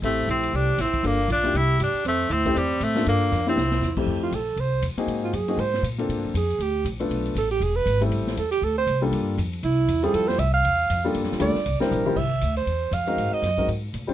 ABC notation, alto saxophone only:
X:1
M:4/4
L:1/8
Q:"Swing" 1/4=237
K:F
V:1 name="Alto saxophone"
C2 E2 G2 E2 | D2 F2 G2 G2 | C2 E2 C2 C2 | D3 E4 z |
z F A2 c2 z2 | z F _A2 c2 z2 | z F _A2 G2 z2 | z2 A G ^G =B2 z |
z2 A G A c2 z | z4 E3 _A | A c e f4- f | z2 d3 B3 |
e3 c3 f2- | f _e3 z4 |]